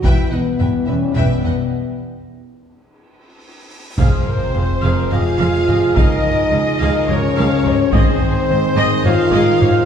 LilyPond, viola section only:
\new Staff \with { instrumentName = "Viola section" } { \time 7/8 \key e \lydian \tempo 4 = 107 b'8 b'8 b'8 b'8 b'8 b'8 r8 | r2. r8 | \key f \minor <aes' f''>8 r8 <aes' f''>8 <aes' f''>8 <g' ees''>8 <aes' f''>8 <g' ees''>8 | <aes' f''>8 r8 <aes' f''>8 <aes' f''>8 <g' ees''>8 <aes' f''>8 <g' ees''>8 |
<aes' ees''>8 r8 <aes' ees''>8 <aes' ees''>8 <g' des''>8 <aes' ees''>8 <g' des''>8 | }